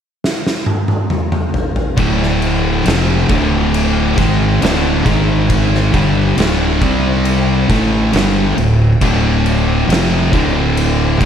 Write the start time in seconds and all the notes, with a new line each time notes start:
0.24 snare
0.47 snare
0.66 high tom
0.88 high tom
1.10 mid tom
1.32 mid tom
1.54 floor tom
1.76 floor tom
1.97 D1 D2 A2 D3, kick, crash
2.22 snare
2.42 crash
2.85 F1 F2 C3 F3, snare, crash
3.29 D1 D2 A2 D3, kick, crash
3.74 crash
4.17 G#1 G#2 D#3 G#3, kick, snare, crash
4.61 D1 D2 A2 D3, snare, crash
5.05 G#1 G#2 D#3 G#3, kick, crash
5.50 kick, crash
5.74 snare
5.93 G1 G2 D3 G3, kick, crash
6.37 D1 D2 A2 D3, snare, crash
6.81 C2 C3 G3 C4, kick, crash
7.25 crash
7.69 A1 A2 E3 A3, kick, snare, crash
8.13 G1 G2 D3 G3, snare, crash
8.57 D1 D2 A2, crash
9.01 D1 D2 A2 D3, kick, crash
9.46 crash
9.88 F1 F2 C3 F3, crash
9.93 snare
10.32 D1 D2 A2 D3, kick, crash
10.77 crash
11.19 G#1 G#2 D#3 G#3, kick, crash